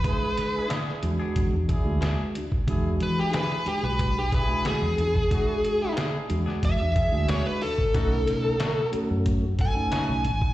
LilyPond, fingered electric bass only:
\new Staff \with { instrumentName = "Fingered electric bass" } { \clef bass \time 4/4 \key e \mixolydian \tempo 4 = 91 r4. e,16 r16 e,16 e,8 d,8 r8. | e,8 e4 r16 b,,4. e,16 e,8 | r4. e,16 r16 e,16 e,8 d,8 r8. | b,,8 b,4 r16 fis,4. b,,16 gis,,16 r16 | }